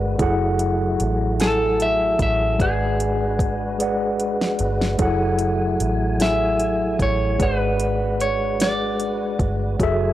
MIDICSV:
0, 0, Header, 1, 6, 480
1, 0, Start_track
1, 0, Tempo, 800000
1, 116, Time_signature, 6, 3, 24, 8
1, 6078, End_track
2, 0, Start_track
2, 0, Title_t, "Clean electric guitar"
2, 0, Program_c, 0, 27
2, 850, Note_on_c, 0, 69, 104
2, 1090, Note_off_c, 0, 69, 0
2, 1093, Note_on_c, 0, 76, 102
2, 1308, Note_off_c, 0, 76, 0
2, 1334, Note_on_c, 0, 76, 94
2, 1568, Note_on_c, 0, 68, 77
2, 1572, Note_off_c, 0, 76, 0
2, 2498, Note_off_c, 0, 68, 0
2, 3732, Note_on_c, 0, 76, 113
2, 4212, Note_off_c, 0, 76, 0
2, 4214, Note_on_c, 0, 73, 87
2, 4452, Note_off_c, 0, 73, 0
2, 4454, Note_on_c, 0, 71, 91
2, 4929, Note_on_c, 0, 73, 80
2, 4939, Note_off_c, 0, 71, 0
2, 5168, Note_off_c, 0, 73, 0
2, 5170, Note_on_c, 0, 74, 93
2, 5679, Note_off_c, 0, 74, 0
2, 6078, End_track
3, 0, Start_track
3, 0, Title_t, "Tine electric piano"
3, 0, Program_c, 1, 4
3, 0, Control_c, 1, 64, 127
3, 0, Note_on_c, 1, 56, 72
3, 0, Note_on_c, 1, 68, 60
3, 0, Note_on_c, 1, 70, 52
3, 0, Note_on_c, 1, 71, 68
3, 0, Note_on_c, 1, 74, 62
3, 0, Note_on_c, 1, 78, 82
3, 111, Note_on_c, 1, 54, 103
3, 116, Note_on_c, 1, 64, 90
3, 122, Note_off_c, 1, 68, 0
3, 122, Note_on_c, 1, 68, 99
3, 123, Control_c, 1, 64, 0
3, 124, Note_off_c, 1, 70, 0
3, 125, Note_off_c, 1, 56, 0
3, 125, Note_off_c, 1, 78, 0
3, 127, Note_off_c, 1, 71, 0
3, 128, Note_off_c, 1, 74, 0
3, 128, Note_on_c, 1, 69, 85
3, 134, Note_on_c, 1, 78, 113
3, 221, Control_c, 1, 64, 127
3, 701, Note_off_c, 1, 54, 0
3, 704, Note_off_c, 1, 64, 0
3, 706, Note_off_c, 1, 68, 0
3, 710, Note_off_c, 1, 69, 0
3, 712, Note_off_c, 1, 78, 0
3, 829, Note_on_c, 1, 54, 58
3, 833, Note_on_c, 1, 64, 56
3, 840, Note_on_c, 1, 80, 56
3, 847, Note_on_c, 1, 69, 51
3, 851, Note_on_c, 1, 81, 67
3, 1420, Note_off_c, 1, 54, 0
3, 1422, Note_off_c, 1, 64, 0
3, 1426, Note_off_c, 1, 80, 0
3, 1429, Note_off_c, 1, 69, 0
3, 1431, Note_off_c, 1, 81, 0
3, 1551, Note_on_c, 1, 56, 87
3, 1556, Note_on_c, 1, 68, 81
3, 1561, Note_on_c, 1, 71, 83
3, 1563, Control_c, 1, 64, 0
3, 1567, Note_on_c, 1, 74, 79
3, 1574, Note_on_c, 1, 78, 95
3, 1665, Control_c, 1, 64, 127
3, 2141, Note_off_c, 1, 56, 0
3, 2144, Note_off_c, 1, 68, 0
3, 2146, Note_off_c, 1, 71, 0
3, 2149, Note_off_c, 1, 74, 0
3, 2153, Note_off_c, 1, 78, 0
3, 2268, Note_on_c, 1, 56, 68
3, 2274, Note_on_c, 1, 68, 67
3, 2278, Note_on_c, 1, 71, 62
3, 2285, Note_on_c, 1, 74, 66
3, 2292, Note_on_c, 1, 78, 76
3, 2860, Note_off_c, 1, 56, 0
3, 2862, Note_off_c, 1, 68, 0
3, 2865, Note_off_c, 1, 71, 0
3, 2868, Note_off_c, 1, 74, 0
3, 2871, Note_off_c, 1, 78, 0
3, 2989, Note_on_c, 1, 54, 110
3, 2995, Note_on_c, 1, 64, 87
3, 3001, Note_on_c, 1, 68, 88
3, 3003, Control_c, 1, 64, 0
3, 3004, Note_on_c, 1, 69, 96
3, 3011, Note_on_c, 1, 78, 115
3, 3113, Control_c, 1, 64, 127
3, 3580, Note_off_c, 1, 54, 0
3, 3583, Note_off_c, 1, 64, 0
3, 3586, Note_off_c, 1, 68, 0
3, 3588, Note_off_c, 1, 69, 0
3, 3591, Note_off_c, 1, 78, 0
3, 3710, Note_on_c, 1, 54, 65
3, 3719, Note_on_c, 1, 64, 57
3, 3725, Note_on_c, 1, 68, 52
3, 3727, Note_on_c, 1, 69, 52
3, 3737, Note_on_c, 1, 80, 66
3, 4301, Note_off_c, 1, 54, 0
3, 4305, Note_off_c, 1, 64, 0
3, 4308, Note_off_c, 1, 68, 0
3, 4309, Note_off_c, 1, 69, 0
3, 4314, Note_off_c, 1, 80, 0
3, 4431, Note_on_c, 1, 56, 83
3, 4435, Note_on_c, 1, 68, 75
3, 4443, Note_on_c, 1, 71, 74
3, 4445, Control_c, 1, 64, 0
3, 4449, Note_on_c, 1, 74, 79
3, 4454, Note_on_c, 1, 78, 94
3, 4551, Control_c, 1, 64, 127
3, 5021, Note_off_c, 1, 56, 0
3, 5023, Note_off_c, 1, 68, 0
3, 5027, Note_off_c, 1, 71, 0
3, 5030, Note_off_c, 1, 74, 0
3, 5033, Note_off_c, 1, 78, 0
3, 5153, Note_on_c, 1, 56, 55
3, 5162, Note_on_c, 1, 68, 48
3, 5165, Note_on_c, 1, 71, 55
3, 5171, Note_on_c, 1, 74, 61
3, 5177, Note_on_c, 1, 78, 65
3, 5742, Note_off_c, 1, 56, 0
3, 5746, Note_off_c, 1, 68, 0
3, 5748, Note_off_c, 1, 71, 0
3, 5751, Note_off_c, 1, 74, 0
3, 5754, Note_off_c, 1, 78, 0
3, 5876, Note_on_c, 1, 54, 112
3, 5880, Note_on_c, 1, 66, 90
3, 5883, Control_c, 1, 64, 0
3, 5888, Note_on_c, 1, 68, 95
3, 5892, Note_on_c, 1, 69, 101
3, 5899, Note_on_c, 1, 76, 127
3, 5975, Control_c, 1, 64, 127
3, 6078, Note_off_c, 1, 54, 0
3, 6078, Note_off_c, 1, 66, 0
3, 6078, Note_off_c, 1, 68, 0
3, 6078, Note_off_c, 1, 69, 0
3, 6078, Note_off_c, 1, 76, 0
3, 6078, End_track
4, 0, Start_track
4, 0, Title_t, "Tonewheel organ"
4, 0, Program_c, 2, 16
4, 0, Note_on_c, 2, 56, 66
4, 0, Note_on_c, 2, 62, 64
4, 0, Note_on_c, 2, 66, 61
4, 0, Note_on_c, 2, 71, 69
4, 98, Note_off_c, 2, 56, 0
4, 98, Note_off_c, 2, 62, 0
4, 98, Note_off_c, 2, 71, 0
4, 99, Note_off_c, 2, 66, 0
4, 111, Note_on_c, 2, 66, 56
4, 112, Note_on_c, 2, 54, 67
4, 113, Note_on_c, 2, 64, 61
4, 114, Note_on_c, 2, 57, 73
4, 1539, Note_off_c, 2, 66, 0
4, 1540, Note_off_c, 2, 54, 0
4, 1540, Note_off_c, 2, 57, 0
4, 1540, Note_off_c, 2, 64, 0
4, 1558, Note_on_c, 2, 56, 61
4, 1559, Note_on_c, 2, 62, 60
4, 1559, Note_on_c, 2, 66, 52
4, 1560, Note_on_c, 2, 71, 77
4, 2983, Note_off_c, 2, 56, 0
4, 2983, Note_off_c, 2, 62, 0
4, 2983, Note_off_c, 2, 66, 0
4, 2984, Note_off_c, 2, 71, 0
4, 2998, Note_on_c, 2, 54, 60
4, 2998, Note_on_c, 2, 57, 72
4, 3000, Note_on_c, 2, 80, 58
4, 3001, Note_on_c, 2, 64, 58
4, 4423, Note_off_c, 2, 54, 0
4, 4423, Note_off_c, 2, 57, 0
4, 4424, Note_off_c, 2, 64, 0
4, 4424, Note_off_c, 2, 80, 0
4, 4430, Note_on_c, 2, 62, 61
4, 4431, Note_on_c, 2, 56, 64
4, 4431, Note_on_c, 2, 66, 62
4, 4432, Note_on_c, 2, 71, 65
4, 5859, Note_off_c, 2, 56, 0
4, 5859, Note_off_c, 2, 62, 0
4, 5859, Note_off_c, 2, 66, 0
4, 5860, Note_off_c, 2, 71, 0
4, 5872, Note_on_c, 2, 64, 61
4, 5875, Note_on_c, 2, 54, 63
4, 5875, Note_on_c, 2, 80, 60
4, 5877, Note_on_c, 2, 57, 68
4, 6078, Note_off_c, 2, 54, 0
4, 6078, Note_off_c, 2, 57, 0
4, 6078, Note_off_c, 2, 64, 0
4, 6078, Note_off_c, 2, 80, 0
4, 6078, End_track
5, 0, Start_track
5, 0, Title_t, "Fingered electric bass"
5, 0, Program_c, 3, 33
5, 0, Note_on_c, 3, 31, 89
5, 92, Note_off_c, 3, 31, 0
5, 118, Note_on_c, 3, 30, 109
5, 573, Note_off_c, 3, 30, 0
5, 603, Note_on_c, 3, 33, 91
5, 1295, Note_off_c, 3, 33, 0
5, 1318, Note_on_c, 3, 33, 94
5, 1533, Note_off_c, 3, 33, 0
5, 1559, Note_on_c, 3, 32, 108
5, 2734, Note_off_c, 3, 32, 0
5, 2762, Note_on_c, 3, 31, 86
5, 2975, Note_off_c, 3, 31, 0
5, 2999, Note_on_c, 3, 30, 103
5, 3454, Note_off_c, 3, 30, 0
5, 3483, Note_on_c, 3, 33, 79
5, 4176, Note_off_c, 3, 33, 0
5, 4199, Note_on_c, 3, 33, 83
5, 4414, Note_off_c, 3, 33, 0
5, 4441, Note_on_c, 3, 32, 101
5, 5615, Note_off_c, 3, 32, 0
5, 5638, Note_on_c, 3, 31, 100
5, 5853, Note_off_c, 3, 31, 0
5, 5880, Note_on_c, 3, 30, 104
5, 6078, Note_off_c, 3, 30, 0
5, 6078, End_track
6, 0, Start_track
6, 0, Title_t, "Drums"
6, 116, Note_on_c, 9, 36, 110
6, 116, Note_on_c, 9, 42, 69
6, 176, Note_off_c, 9, 36, 0
6, 176, Note_off_c, 9, 42, 0
6, 355, Note_on_c, 9, 42, 61
6, 415, Note_off_c, 9, 42, 0
6, 599, Note_on_c, 9, 42, 53
6, 659, Note_off_c, 9, 42, 0
6, 838, Note_on_c, 9, 42, 67
6, 847, Note_on_c, 9, 38, 111
6, 898, Note_off_c, 9, 42, 0
6, 907, Note_off_c, 9, 38, 0
6, 1079, Note_on_c, 9, 42, 47
6, 1139, Note_off_c, 9, 42, 0
6, 1315, Note_on_c, 9, 36, 85
6, 1315, Note_on_c, 9, 42, 51
6, 1375, Note_off_c, 9, 36, 0
6, 1375, Note_off_c, 9, 42, 0
6, 1558, Note_on_c, 9, 36, 104
6, 1560, Note_on_c, 9, 42, 69
6, 1618, Note_off_c, 9, 36, 0
6, 1620, Note_off_c, 9, 42, 0
6, 1800, Note_on_c, 9, 42, 58
6, 1860, Note_off_c, 9, 42, 0
6, 2035, Note_on_c, 9, 36, 95
6, 2041, Note_on_c, 9, 42, 54
6, 2095, Note_off_c, 9, 36, 0
6, 2101, Note_off_c, 9, 42, 0
6, 2280, Note_on_c, 9, 42, 79
6, 2340, Note_off_c, 9, 42, 0
6, 2518, Note_on_c, 9, 42, 47
6, 2578, Note_off_c, 9, 42, 0
6, 2648, Note_on_c, 9, 38, 76
6, 2708, Note_off_c, 9, 38, 0
6, 2753, Note_on_c, 9, 42, 44
6, 2813, Note_off_c, 9, 42, 0
6, 2889, Note_on_c, 9, 38, 83
6, 2949, Note_off_c, 9, 38, 0
6, 2992, Note_on_c, 9, 42, 74
6, 2995, Note_on_c, 9, 36, 102
6, 3052, Note_off_c, 9, 42, 0
6, 3055, Note_off_c, 9, 36, 0
6, 3232, Note_on_c, 9, 42, 58
6, 3292, Note_off_c, 9, 42, 0
6, 3481, Note_on_c, 9, 42, 56
6, 3541, Note_off_c, 9, 42, 0
6, 3719, Note_on_c, 9, 42, 72
6, 3729, Note_on_c, 9, 38, 107
6, 3779, Note_off_c, 9, 42, 0
6, 3789, Note_off_c, 9, 38, 0
6, 3957, Note_on_c, 9, 42, 48
6, 4017, Note_off_c, 9, 42, 0
6, 4196, Note_on_c, 9, 36, 77
6, 4198, Note_on_c, 9, 42, 48
6, 4256, Note_off_c, 9, 36, 0
6, 4258, Note_off_c, 9, 42, 0
6, 4438, Note_on_c, 9, 36, 105
6, 4439, Note_on_c, 9, 42, 75
6, 4498, Note_off_c, 9, 36, 0
6, 4499, Note_off_c, 9, 42, 0
6, 4677, Note_on_c, 9, 42, 61
6, 4737, Note_off_c, 9, 42, 0
6, 4923, Note_on_c, 9, 42, 55
6, 4983, Note_off_c, 9, 42, 0
6, 5160, Note_on_c, 9, 42, 76
6, 5169, Note_on_c, 9, 38, 116
6, 5220, Note_off_c, 9, 42, 0
6, 5229, Note_off_c, 9, 38, 0
6, 5398, Note_on_c, 9, 42, 46
6, 5458, Note_off_c, 9, 42, 0
6, 5636, Note_on_c, 9, 36, 79
6, 5638, Note_on_c, 9, 42, 41
6, 5696, Note_off_c, 9, 36, 0
6, 5698, Note_off_c, 9, 42, 0
6, 5878, Note_on_c, 9, 36, 112
6, 5879, Note_on_c, 9, 42, 69
6, 5938, Note_off_c, 9, 36, 0
6, 5939, Note_off_c, 9, 42, 0
6, 6078, End_track
0, 0, End_of_file